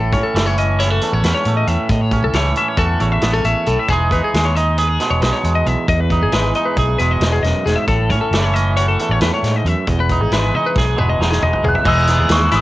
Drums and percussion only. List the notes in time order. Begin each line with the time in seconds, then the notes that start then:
0.13 kick, closed hi-hat
0.36 snare, closed hi-hat
0.58 closed hi-hat
0.80 snare, closed hi-hat
1.01 closed hi-hat
1.24 snare, closed hi-hat
1.45 closed hi-hat
1.67 closed hi-hat
1.89 kick, closed hi-hat
2.11 kick, closed hi-hat
2.33 snare, closed hi-hat
2.56 closed hi-hat
2.77 kick, closed hi-hat
3.00 closed hi-hat
3.21 snare, closed hi-hat
3.44 closed hi-hat
3.66 closed hi-hat
3.89 kick, closed hi-hat
4.11 kick, closed hi-hat
4.34 snare, closed hi-hat
4.56 closed hi-hat
4.78 closed hi-hat
5.00 snare, closed hi-hat
5.22 snare, closed hi-hat
5.44 closed hi-hat
5.66 closed hi-hat
5.88 kick, closed hi-hat
6.10 kick, closed hi-hat
6.32 snare, closed hi-hat
6.55 closed hi-hat
6.77 kick, closed hi-hat
6.99 closed hi-hat
7.21 snare, closed hi-hat
7.44 snare, closed hi-hat
7.67 snare, closed hi-hat
7.88 kick, closed hi-hat
8.10 kick, closed hi-hat
8.33 snare, closed hi-hat
8.56 closed hi-hat
8.77 closed hi-hat
8.99 closed hi-hat
9.21 snare, closed hi-hat
9.44 snare, closed hi-hat
9.66 closed hi-hat
9.87 kick, closed hi-hat
10.09 kick, closed hi-hat
10.31 snare, closed hi-hat
10.54 high tom
10.76 kick, snare
10.98 mid tom
11.22 snare
11.32 snare
11.43 mid tom
11.53 floor tom
11.64 floor tom
11.75 floor tom
11.85 kick, crash
12.07 snare, closed hi-hat
12.29 snare, closed hi-hat
12.51 snare, closed hi-hat